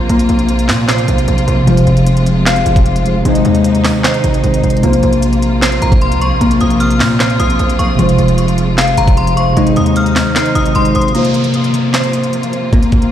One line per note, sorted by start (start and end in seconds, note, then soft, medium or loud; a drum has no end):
0.00 1.62 C3 medium
0.00 4.79 C3 medium
0.00 3.21 F3 medium
0.00 1.63 A#3 medium
0.00 1.64 A#3 medium
0.00 1.64 F4 medium
0.00 3.21 F4 medium
0.00 0.87 C5 loud
0.00 1.65 C5 medium
0.09 0.28 A#1 loud
0.09 1.67 A#3 loud
0.09 closed hi-hat medium
0.19 closed hi-hat medium
0.29 0.70 A#1 loud
0.29 closed hi-hat medium
0.39 closed hi-hat medium
0.49 closed hi-hat medium
0.59 closed hi-hat medium
0.69 1.06 A#2 loud
0.69 snare loud
0.69 clap medium
0.69 open hi-hat medium
0.88 1.67 C5 medium
0.88 snare loud
0.88 clap loud
0.88 closed hi-hat medium
0.98 closed hi-hat medium
1.08 1.27 A#1 loud
1.08 closed hi-hat medium
1.18 closed hi-hat medium
1.28 1.47 A#1 loud
1.28 closed hi-hat medium
1.38 closed hi-hat medium
1.48 1.67 A#1 loud
1.48 closed hi-hat medium
1.64 1.86 F1 loud
1.64 3.01 C3 medium
1.64 3.25 F3 loud
1.64 3.02 G#3 medium
1.64 4.80 G#3 medium
1.64 closed hi-hat medium
1.68 3.03 F4 medium
1.68 3.04 C5 medium
1.77 closed hi-hat medium
1.87 2.63 F1 loud
1.87 closed hi-hat medium
1.97 closed hi-hat medium
2.07 closed hi-hat medium
2.17 closed hi-hat medium
2.26 closed hi-hat medium
2.46 3.25 F5 loud
2.46 snare loud
2.46 clap loud
2.46 closed hi-hat medium
2.56 closed hi-hat medium
2.66 3.23 F1 loud
2.66 closed hi-hat medium
2.76 kick loud
2.76 closed hi-hat medium
2.86 closed hi-hat medium
2.96 closed hi-hat medium
3.04 3.20 C3 medium
3.04 3.23 G#3 medium
3.04 3.26 F4 medium
3.04 3.26 C5 medium
3.04 closed hi-hat medium
3.22 3.44 G#1 loud
3.22 4.39 C3 medium
3.22 4.41 G#3 medium
3.22 4.83 G#3 loud
3.22 4.82 D#4 medium
3.22 closed hi-hat medium
3.26 4.82 D#3 medium
3.26 4.42 D#4 medium
3.26 4.43 C5 medium
3.35 closed hi-hat medium
3.45 3.92 D#2 loud
3.45 closed hi-hat medium
3.55 closed hi-hat medium
3.64 closed hi-hat medium
3.75 closed hi-hat medium
3.84 snare loud
3.84 clap medium
3.84 open hi-hat medium
4.04 4.83 C5 loud
4.04 snare loud
4.04 clap loud
4.04 closed hi-hat medium
4.14 closed hi-hat medium
4.24 4.43 G#1 loud
4.24 closed hi-hat medium
4.34 closed hi-hat medium
4.43 4.63 G#1 loud
4.43 4.78 C3 medium
4.43 4.83 G#3 medium
4.43 4.84 D#4 medium
4.43 4.84 C5 medium
4.43 closed hi-hat medium
4.54 closed hi-hat medium
4.63 4.82 G#1 loud
4.63 closed hi-hat medium
4.70 closed hi-hat medium
4.77 7.93 C3 medium
4.77 closed hi-hat medium
4.82 5.02 A#1 loud
4.82 11.11 C3 medium
4.82 9.53 F3 medium
4.82 7.94 A#3 medium
4.82 6.40 A#3 medium
4.82 7.96 A#3 medium
4.82 9.53 F4 medium
4.82 7.95 F4 medium
4.82 closed hi-hat medium
4.86 7.97 C5 medium
4.93 closed hi-hat medium
5.03 5.79 A#1 loud
5.03 closed hi-hat medium
5.13 closed hi-hat medium
5.22 closed hi-hat medium
5.33 closed hi-hat medium
5.42 closed hi-hat medium
5.62 7.19 C5 loud
5.62 snare loud
5.62 clap loud
5.62 closed hi-hat medium
5.72 closed hi-hat medium
5.82 6.13 A#1 loud
5.82 6.01 A#5 medium
5.82 closed hi-hat medium
5.92 kick loud
5.92 closed hi-hat medium
6.01 6.20 C6 medium
6.01 closed hi-hat medium
6.11 6.28 C#2 loud
6.11 closed hi-hat medium
6.21 6.40 C#6 medium
6.21 closed hi-hat medium
6.26 6.40 A#1 loud
6.41 6.60 A#1 loud
6.41 7.99 A#3 loud
6.41 closed hi-hat medium
6.51 closed hi-hat medium
6.61 7.02 A#1 loud
6.61 6.80 D#6 medium
6.61 closed hi-hat medium
6.70 closed hi-hat medium
6.80 7.36 F6 medium
6.80 closed hi-hat medium
6.91 closed hi-hat medium
7.00 7.38 A#2 loud
7.00 snare loud
7.00 clap medium
7.00 open hi-hat medium
7.20 7.99 C5 loud
7.20 snare loud
7.20 clap loud
7.20 closed hi-hat medium
7.30 closed hi-hat medium
7.40 7.59 A#1 loud
7.40 7.77 D#6 medium
7.40 closed hi-hat medium
7.50 closed hi-hat medium
7.59 7.78 A#1 loud
7.59 closed hi-hat medium
7.70 closed hi-hat medium
7.79 7.98 A#1 loud
7.79 7.98 C#6 medium
7.79 closed hi-hat medium
7.95 8.18 F1 loud
7.95 9.33 C3 medium
7.95 9.56 F3 medium
7.95 9.34 G#3 medium
7.95 11.12 G#3 medium
7.95 closed hi-hat medium
8.00 9.35 F4 medium
8.00 9.36 C5 medium
8.09 closed hi-hat medium
8.18 8.94 F1 loud
8.18 closed hi-hat medium
8.28 closed hi-hat medium
8.38 closed hi-hat medium
8.48 closed hi-hat medium
8.58 closed hi-hat medium
8.78 9.57 F5 loud
8.78 snare loud
8.78 clap loud
8.78 closed hi-hat medium
8.88 closed hi-hat medium
8.97 9.54 F1 loud
8.97 9.16 A#5 medium
8.97 closed hi-hat medium
9.08 kick loud
9.08 closed hi-hat medium
9.17 9.36 C6 medium
9.17 closed hi-hat medium
9.27 closed hi-hat medium
9.36 9.52 C3 medium
9.36 9.54 G#3 medium
9.36 9.57 F4 medium
9.36 9.58 C5 medium
9.36 9.56 C#6 medium
9.36 closed hi-hat medium
9.53 9.76 G#1 loud
9.53 10.71 C3 medium
9.53 11.13 D#3 medium
9.53 10.72 G#3 medium
9.53 11.15 G#3 loud
9.53 11.13 D#4 medium
9.53 closed hi-hat medium
9.58 10.73 D#4 medium
9.58 10.75 C5 medium
9.67 closed hi-hat medium
9.76 10.24 D#2 loud
9.76 9.95 D#6 medium
9.76 closed hi-hat medium
9.86 closed hi-hat medium
9.96 10.52 F6 medium
9.96 closed hi-hat medium
10.06 closed hi-hat medium
10.16 snare loud
10.16 clap medium
10.16 open hi-hat medium
10.36 11.15 C5 loud
10.36 snare loud
10.36 clap loud
10.36 closed hi-hat medium
10.46 closed hi-hat medium
10.55 10.74 G#1 loud
10.55 10.74 D#6 medium
10.55 closed hi-hat medium
10.66 closed hi-hat medium
10.74 10.94 G#1 loud
10.74 11.10 C3 medium
10.74 11.15 G#3 medium
10.74 11.15 D#4 medium
10.74 11.16 C5 medium
10.74 10.94 C6 medium
10.74 closed hi-hat medium
10.85 closed hi-hat medium
10.95 11.14 G#1 loud
10.95 11.14 D#6 medium
10.95 closed hi-hat medium
11.01 closed hi-hat medium
11.08 13.12 C3 medium
11.08 closed hi-hat medium
11.13 13.12 C3 medium
11.13 13.12 F3 medium
11.13 13.12 A#3 medium
11.13 12.71 A#3 medium
11.13 13.12 A#3 medium
11.13 13.12 F4 medium
11.13 closed hi-hat medium
11.13 downlifter medium
11.18 13.12 C5 medium
11.25 closed hi-hat medium
11.34 closed hi-hat medium
11.44 closed hi-hat medium
11.54 closed hi-hat medium
11.64 closed hi-hat medium
11.74 closed hi-hat medium
11.94 13.12 C5 loud
11.94 snare loud
11.94 clap medium
11.94 closed hi-hat medium
12.04 closed hi-hat medium
12.13 closed hi-hat medium
12.24 closed hi-hat medium
12.33 closed hi-hat medium
12.43 closed hi-hat medium
12.53 closed hi-hat medium
12.73 13.12 A#3 loud
12.73 kick loud
12.73 closed hi-hat medium
12.83 closed hi-hat medium
12.92 kick medium
12.92 closed hi-hat medium
13.02 closed hi-hat medium